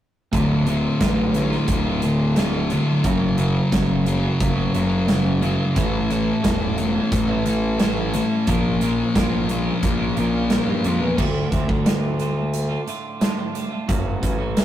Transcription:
0.32 picked electric bass D1, clean electric guitar D2 A2 D3 A3 F4, kick, closed hi-hat
0.66 distorted electric guitar D2, clean electric guitar A2 D3 A3 F4, closed hi-hat
1.00 picked electric bass A1, clean electric guitar D2 A2 D3 A3 F4, kick, snare, closed hi-hat
1.34 distorted electric guitar D2 A2 D3, muted clean electric guitar stroke, closed hi-hat
1.51 clean electric guitar D3 A3 F4, snare
1.68 picked electric bass D1, distorted electric guitar D2 A2 D3, kick, closed hi-hat
1.85 clean electric guitar D3 A3 F4
2.02 distorted electric guitar D2, clean electric guitar A2 D3 A3 F4, closed hi-hat
2.36 clean electric guitar D2 A2 D3 A3 F4, snare, closed hi-hat
2.53 clean electric guitar D3 A3 F4
2.70 distorted electric guitar D2, clean electric guitar A2 D3 A3 F4, closed hi-hat
2.87 clean electric guitar D3 A3 F4
3.04 picked electric bass F#1, clean electric guitar F#2 C#3 F#3 A3 C#4 F#4, kick, closed hi-hat
3.38 distorted electric guitar F#2 C#3, clean electric guitar F#3 A3 C#4 F#4, closed hi-hat
3.72 picked electric bass F#1, clean electric guitar F#2 C#3 F#3 A3 C#4 F#4, kick, snare, closed hi-hat
4.06 distorted electric guitar F#2 C#3 F#3, muted clean electric guitar stroke, closed hi-hat
4.23 clean electric guitar F#3 A3 C#4 F#4
4.40 picked electric bass F#1, distorted electric guitar F#2 C#3 F#3, kick, closed hi-hat
4.56 clean electric guitar F#3 A3 C#4 F#4
4.73 picked electric bass F#1, distorted electric guitar F#2 C#3, clean electric guitar F#3 A3 C#4 F#4, closed hi-hat
5.07 clean electric guitar F#2 C#3 F#3 A3 C#4 F#4, snare, closed hi-hat
5.24 clean electric guitar F#3 A3 C#4 F#4
5.41 distorted electric guitar F#2 C#3, clean electric guitar F#3 A3 C#4 F#4, closed hi-hat
5.58 clean electric guitar F#3 A3 C#4 F#4
5.74 picked electric bass A1, clean electric guitar A2 E3 A3 C#4 E4 A4, kick, closed hi-hat
6.09 distorted electric guitar A2 E3, clean electric guitar A3 C#4 E4 A4, closed hi-hat
6.42 picked electric bass E1, clean electric guitar A2 E3 A3 C#4 E4 A4, kick, snare, closed hi-hat
6.78 distorted electric guitar A2 E3 A3, muted clean electric guitar stroke, closed hi-hat
6.94 clean electric guitar A3 C#4 E4 A4
7.12 picked electric bass A1, distorted electric guitar A2 E3 A3, kick, closed hi-hat
7.28 clean electric guitar A3 C#4 E4 A4
7.44 distorted electric guitar A2 E3, clean electric guitar A3 C#4 E4 A4, closed hi-hat
7.78 clean electric guitar A2 E3 A3 C#4 E4 A4, snare, closed hi-hat
7.96 clean electric guitar A3 C#4 E4 A4
8.13 distorted electric guitar A2 E3, clean electric guitar A3 C#4 E4 A4, closed hi-hat
8.29 clean electric guitar A3 C#4 E4 A4
8.46 picked electric bass A#1, clean electric guitar A#2 F3 A#3 C#4 F4 A#4, kick, closed hi-hat
8.80 distorted electric guitar A#2 F3, clean electric guitar A#3 C#4 F4 A#4, closed hi-hat
9.14 picked electric bass A#1, clean electric guitar A#2 F3 A#3 C#4 F4 A#4, kick, snare, closed hi-hat
9.49 distorted electric guitar A#2 F3 A#3, muted clean electric guitar stroke, closed hi-hat
9.65 clean electric guitar A#3 C#4 F4 A#4
9.83 picked electric bass A#1, distorted electric guitar A#2 F3 A#3, kick, closed hi-hat
9.99 clean electric guitar A#3 C#4 F4 A#4
10.15 picked electric bass A#1, distorted electric guitar A#2 F3, clean electric guitar A#3 C#4 F4 A#4, closed hi-hat
10.50 clean electric guitar A#2 F3 A#3 C#4 F4 A#4, snare, closed hi-hat
10.66 picked electric bass G2, clean electric guitar A#3 C#4 F4 A#4
10.84 picked electric bass F2, distorted electric guitar A#2 F3, clean electric guitar A#3 C#4 F4 A#4, closed hi-hat
11.01 picked electric bass E2, clean electric guitar A#3 C#4 F4 A#4
11.17 clean electric guitar D2 A2 D3 A3 F4, picked electric bass D2, kick, crash
11.51 picked electric bass D2, clean electric guitar A2 D3 A3 F4, kick, closed hi-hat
11.68 picked electric bass D2, clean electric guitar D3 A3 F4, kick
11.85 clean electric guitar D2 A2 D3 A3 F4, snare, closed hi-hat
12.19 clean electric guitar A2 D3 A3 F4, closed hi-hat
12.36 clean electric guitar D3 A3 F4
12.54 closed hi-hat
12.69 clean electric guitar D3 A3 F4
12.87 clean electric guitar A2 D3 A3 F4, closed hi-hat
13.20 clean electric guitar D2 A2 D3 A3 F4, snare, closed hi-hat
13.36 clean electric guitar D3 A3 F4
13.53 clean electric guitar A2 D3 A3 F4, closed hi-hat
13.71 clean electric guitar D3 A3 F4
13.87 picked electric bass F#1, clean electric guitar F#2 C#3 F#3 A3 C#4 F#4, kick, closed hi-hat
14.22 picked electric bass A1, clean electric guitar F#3 A3 C#4 F#4, kick, closed hi-hat
14.38 clean electric guitar F#3 A3 C#4 F#4
14.55 clean electric guitar F#2 C#3 F#3 A3 C#4 F#4, snare, closed hi-hat

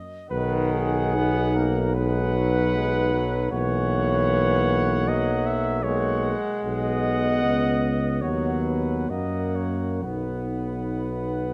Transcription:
Already playing: trumpet section D#5
0.30 tuba B1, trombone D#3, euphonium D#4, flugelhorn B4, trumpet section F#5
0.72 flugelhorn G#4
1.15 trombone B3
1.55 trombone A#3, flugelhorn A#4
1.94 trombone G#3, euphonium D#4, flugelhorn B4, trumpet section F#5
2.36 trombone F#3
2.75 trombone G#3
3.14 trombone F#3
3.52 tuba B1, trombone E3, euphonium A#3, flugelhorn C#5, trumpet section F#5
5.08 trombone F#3, flugelhorn D#5
5.46 flugelhorn E5
5.83 trombone G#3, euphonium A#3, flugelhorn C#5, trumpet section F#5
6.63 tuba B1, euphonium B3, flugelhorn D#5, trumpet section F#5
7.43 tuba C#2
8.22 tuba D#2, trombone F#3, euphonium B3, flugelhorn C#5, trumpet section F#5
8.65 flugelhorn B4
9.10 tuba F#2, trombone A#3, euphonium A#3, flugelhorn D#5, trumpet section F#5
9.55 flugelhorn C#5
10.02 tuba B1, trombone B3, euphonium D#4, flugelhorn B4, trumpet section F#5

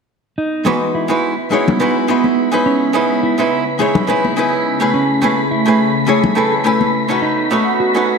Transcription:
0.37 analog synth pad B3, clean electric guitar D#4, synth texture B5
0.65 hollow-body jazz guitar E3 G#3 D#4 F#4 B4, high conga
0.95 clean electric guitar E4
1.08 hollow-body jazz guitar G#3 D#4 E4 F#4 B4
1.51 hollow-body jazz guitar G#3 D#4 E4 F#4 C#5, clean electric guitar G#4
1.68 high conga, low conga
1.80 hollow-body jazz guitar G#3 D#4 E4 F#4 B4, clean electric guitar B4
2.08 hollow-body jazz guitar G#3 D#4 E4 F#4 B4
2.24 high conga
2.52 hollow-body jazz guitar G#3 C#4 D#4 E4 B4
2.66 analog synth pad C#3, clean electric guitar C#4
2.93 hollow-body jazz guitar G#3 C#4 D#4 E4 B4
3.23 clean electric guitar E4
3.38 hollow-body jazz guitar G#3 C#4 D#4 E4 B4
3.79 hollow-body jazz guitar G#3 C#4 D#4 E4 C#5, clean electric guitar G#4
3.95 low conga
4.07 hollow-body jazz guitar G#3 C#4 D#4 E4 B4, clean electric guitar B4
4.25 high conga
4.37 hollow-body jazz guitar G#3 C#4 D#4 E4 B4
4.80 hollow-body jazz guitar A3 C#4 E4 G#4 B4
4.94 analog synth pad A3, clean electric guitar C#4
5.22 hollow-body jazz guitar A3 C#4 E4 G#4 B4, high conga
5.51 clean electric guitar E4
5.66 hollow-body jazz guitar A3 C#4 E4 G#4 B4
6.07 hollow-body jazz guitar A3 C#4 E4 G#4 C#5, clean electric guitar G#4
6.24 high conga, low conga
6.35 hollow-body jazz guitar A3 C#4 E4 G#4 B4, clean electric guitar A4
6.64 hollow-body jazz guitar A3 C#4 E4 B4 G#5
6.81 high conga
7.08 hollow-body jazz guitar A3 C#4 D#4 F#4 B4
7.22 analog synth pad B3 F#4, clean electric guitar D#4
7.51 hollow-body jazz guitar A3 C#4 D#4 F#4 B4
7.80 clean electric guitar F#4
7.95 hollow-body jazz guitar A3 C#4 D#4 F#4 B4

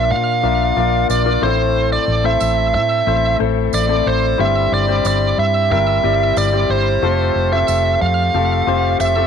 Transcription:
Already playing: fingered electric bass A#1, grand piano A#2 A#3 D4 F4 A#4 D5, lead electric guitar E5
0.11 fingered electric bass A#2, lead electric guitar F5
0.43 fingered electric bass A#1, grand piano A#3 D4 F4 A#4 E5
0.76 fingered electric bass A#1, grand piano A#3 D4 F4 A#4 D5
1.09 fingered electric bass A#1, lead electric guitar D5, tambourine
1.25 grand piano A#3 D4 F4 A#4 D5
1.41 fingered electric bass A1, grand piano A2 A3 C4 E4 A4 C5, lead electric guitar C5
1.93 lead electric guitar D5
2.08 fingered electric bass A1
2.24 grand piano A3 C4 E4 A4 C5, lead electric guitar E5
2.40 fingered electric bass A1, tambourine
2.74 fingered electric bass A2, lead electric guitar E5
3.06 fingered electric bass A1, grand piano A3 C4 E4 A4 C5
3.39 fingered electric bass A1, grand piano A3 C4 E4 A4 C5
3.73 fingered electric bass A1, lead electric guitar D5, tambourine
3.88 grand piano A3 C4 E4 A4 D5
4.06 fingered electric bass A1, lead electric guitar C5
4.38 fingered electric bass G1, grand piano G2 G3 C4 E4 G4 C5, lead electric guitar E5
4.72 fingered electric bass G1, lead electric guitar D5
4.87 grand piano G3 C4 E4 G4 C5
5.05 fingered electric bass G1, lead electric guitar D5, tambourine
5.38 fingered electric bass G2, lead electric guitar E5
5.70 fingered electric bass G1, grand piano G3 C4 E4 G4 A#4, lead electric guitar E5
6.03 fingered electric bass G1, grand piano G3 C4 E4 G4 D5
6.37 fingered electric bass G1, lead electric guitar D5, tambourine
6.52 grand piano G3 C4 E4 G4 D5
6.69 fingered electric bass G1, lead electric guitar C5
7.02 fingered electric bass F1, grand piano A3 C4 F4 G4 A4
7.35 fingered electric bass F1
7.51 grand piano A3 C4 F4 G4 C5, lead electric guitar E5
7.68 fingered electric bass F1, tambourine
8.01 fingered electric bass F2, lead electric guitar F5
8.34 fingered electric bass F1, grand piano A3 C4 F4 G4 A4
8.67 fingered electric bass F1, grand piano A3 C4 F4 G4 C5
9.00 fingered electric bass F1, lead electric guitar E5, tambourine
9.16 grand piano A3 C4 F4 G4 A4

